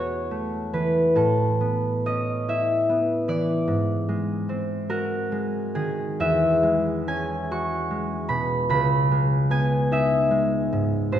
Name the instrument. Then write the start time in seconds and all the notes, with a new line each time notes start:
harp
Already playing: E2 G#3 A3 B3 C#4 F#4 C#5 E5 F#5
0.31 A3
0.73 E3 B4
1.15 A2 A4
1.60 B3
2.06 C#4 D#5
2.48 E4 E5
2.89 B3
3.28 E3 D5
3.68 G#2
4.09 G#3
4.49 C4
4.90 F#4 A#4
5.32 G#3
5.75 D#3 G#4
6.20 E2 E5
6.63 G#3
7.07 C#4 G#5
7.51 F#4 C#6
7.91 G#3
8.29 B2 B5
8.69 C#2 B5
9.11 G#3
9.50 B3 G#5
9.92 D#4 E5
10.31 G#3
10.72 G#2
11.12 A1 C5